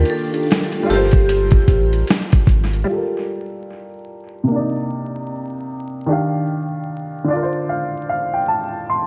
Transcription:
Already playing: D#3 A#3 D4 F4 G4 A#4
0.05 closed hi-hat
0.10 A4
0.34 closed hi-hat
0.51 snare, closed hi-hat
0.72 closed hi-hat
0.83 G3 F4
0.88 G1 G3 G4 A4 A#4, snare, closed hi-hat
0.95 C5
1.11 kick, closed hi-hat
1.29 closed hi-hat
1.51 kick, closed hi-hat
1.68 A1, kick, closed hi-hat
1.93 closed hi-hat
2.07 snare, closed hi-hat
2.32 kick, closed hi-hat
2.47 G#1, kick, closed hi-hat
2.73 closed hi-hat
2.84 G3 F4
2.92 A4
2.96 A#4
4.44 C3
4.48 A#3
4.52 D4
4.56 D#4 D5
6.06 D#3 D4
6.11 G4 F5
7.24 D3 D4
7.30 F4 D5
7.36 A#4
7.43 C5
7.69 F5
8.09 F5
8.34 G5
8.48 A5
8.90 C6

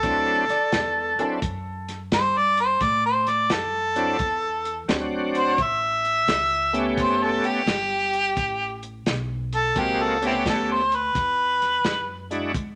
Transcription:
Already playing: A4
0.03 D2 F#3 C4 D4 E4, kick, closed hi-hat
0.49 D5, muted upright bass stroke, snare, closed hi-hat
0.72 E2, snare, closed hi-hat
1.19 F#3 C4 D4 E4 A4, muted upright bass stroke, closed hi-hat
1.42 F#2, kick, closed hi-hat
1.89 snare, closed hi-hat
2.12 G2 C5, snare, closed hi-hat
2.38 D5
2.57 C5, closed hi-hat
2.80 A2 D5, kick, snare, closed hi-hat
3.06 C5
3.27 D5, snare, closed hi-hat
3.50 F#2 A4, snare, closed hi-hat
3.96 F#3 C4 D4 E4, closed hi-hat
4.19 E2, kick, closed hi-hat
4.65 closed hi-hat
4.88 D2 F#3 C4 D4 F#4, snare, closed hi-hat
5.35 C5, closed hi-hat
5.58 A1, kick, closed hi-hat
5.62 E5
6.05 closed hi-hat
6.28 C#2, snare, closed hi-hat
6.73 A3 B3 C#4 G4, closed hi-hat
6.98 F#1 C5, kick, snare, closed hi-hat
7.23 A4
7.44 G4, muted upright bass stroke, closed hi-hat
7.66 G1, snare, closed hi-hat
8.13 closed hi-hat
8.37 A1, kick, closed hi-hat
8.83 closed hi-hat
9.06 B1, snare, closed hi-hat
9.53 A4, closed hi-hat
9.75 C#2 G#3 A#3 C4 F#4 G4, kick, snare, closed hi-hat
10.03 A4
10.21 A3 B3 C#4 G4, closed hi-hat
10.26 C4 E4 G4
10.46 D2 A4, kick, snare, closed hi-hat
10.72 C5
10.92 B4, closed hi-hat
11.15 E2, kick, snare, closed hi-hat
11.62 snare, closed hi-hat
11.84 F#2, snare, closed hi-hat
12.30 G#3 D4 E4 F#4, closed hi-hat
12.54 G#2, kick, closed hi-hat

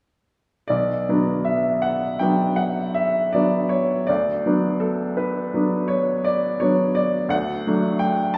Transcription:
0.68 B1 D5
1.09 F#3 B3 D4
1.45 E5
1.82 F#5
2.19 F#3 B3 D4 G5
2.56 F#5
2.94 E5
3.33 F#3 B3 D4 D5
3.69 C#5
4.07 D2 D5
4.46 F#3 B3 D4
4.80 A4
5.17 B4
5.54 F#3 B3 D4
5.88 C#5
6.24 D5
6.60 F#3 B3 D4 C#5
6.95 D5
7.29 D2 F#5
7.67 F#3 A3 D4
7.99 G5
8.34 A5

